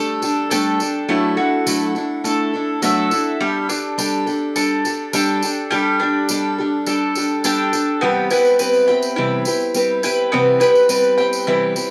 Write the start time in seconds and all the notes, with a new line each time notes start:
Already playing: G3 A3 D4 G4 A4
0.22 D4 G4 A4, tambourine
0.51 G3 A3 D4 G4 A4 G5, tambourine
0.79 D4 G4 A4, tambourine
1.09 F#3 A3 D4 E4 A4
1.37 D4 E4 F#4 A4
1.66 F#3 A3 D4 E4 A4, tambourine
1.95 D4 E4 A4, tambourine
2.24 A3 D4 E4 A4, tambourine
2.53 D4 E4 A4
2.82 F#3 A3 D4 E4 F#4 A4 E5, tambourine
3.11 D4 E4 A4, tambourine
3.40 G3 D4 G4 A4
3.69 D4 G4 A4, tambourine
3.98 G3 D4 G4 A4, tambourine
4.26 D4 G4 A4, tambourine
4.55 G3 D4 G4 A4, tambourine
4.85 D4 G4 A4, tambourine
5.13 G3 D4 G4 A4 G5, tambourine
5.43 D4 G4 A4, tambourine
5.71 G3 D4 G4 A4, tambourine
6.00 D4 G4 A4
6.29 G3 D4 G4 A4, tambourine
6.58 D4 G4 A4
6.86 G3 D4 G4 A4, tambourine
7.15 D4 G4 A4, tambourine
7.44 G3 D4 G4 A4 G5, tambourine
7.73 D4 G4 A4, tambourine
8.01 C3 E3 G3 B3 C4 G4 B4 G5
8.30 G3 C4 E4 G4 B4 G5, tambourine
8.45 tambourine
8.59 G3 C4 G4 B4, tambourine
8.73 tambourine
8.87 G3 C4 G4 B4 G5, tambourine
9.02 tambourine
9.16 C3 E3 G3 C4 E4 G4 B4
9.45 G3 C4 G4 B4, tambourine
9.60 tambourine
9.74 G3 C4 G4 B4, tambourine
10.03 G3 C4 E4 G4 B4 G5, tambourine
10.32 C3 E3 G3 B3 C4 G4 B4 G5
10.60 G3 C4 E4 G4 B4 G5, tambourine
10.75 tambourine
10.89 G3 C4 G4 B4, tambourine
11.04 tambourine
11.17 G3 C4 G4 B4 G5, tambourine
11.33 tambourine
11.47 C3 E3 G3 C4 E4 G4 B4
11.75 G3 C4 G4 B4, tambourine